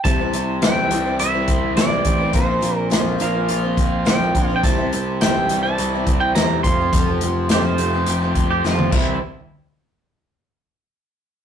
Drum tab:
CC |----------------|----------------|----------------|--------------x-|
HH |x-x-x-x-x-x-x-x-|x-x-x-x-x-x-x-x-|x-x-x-x-x-x-x-x-|x-x-x-x-x-x-----|
SD |----o-------o---|----o-------o---|----o-------o---|----o-------o---|
T1 |----------------|----------------|----------------|-------------o--|
BD |o---------o---o-|o---------o---o-|o---------o---o-|o---------o---o-|

CC |----------------|
HH |----------------|
SD |----------------|
T1 |----------------|
BD |----------------|